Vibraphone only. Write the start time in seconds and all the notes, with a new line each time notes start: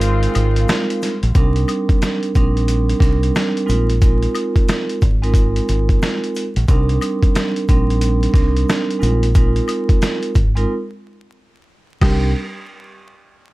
Already playing: G#3 C4 D#4 F4 A#4
1.35 G3 C4 D4 D#4 A#4
2.35 G3 C4 D4 D#4 A#4
3.00 G3 C4 D4 D#4 A#4
3.66 G#3 C4 D#4 F4 A#4
4.02 G#3 C4 D#4 F4 A#4
5.22 G#3 C4 D#4 F4 A#4
6.68 G3 C4 D4 D#4 A#4
7.69 G3 C4 D4 D#4 A#4
8.33 G3 C4 D4 D#4 A#4
8.99 G#3 C4 D#4 F4 A#4
9.35 G#3 C4 D#4 F4 A#4
10.55 G#3 C4 D#4 F4 A#4
12.01 G3 C4 D4 D#4 A#4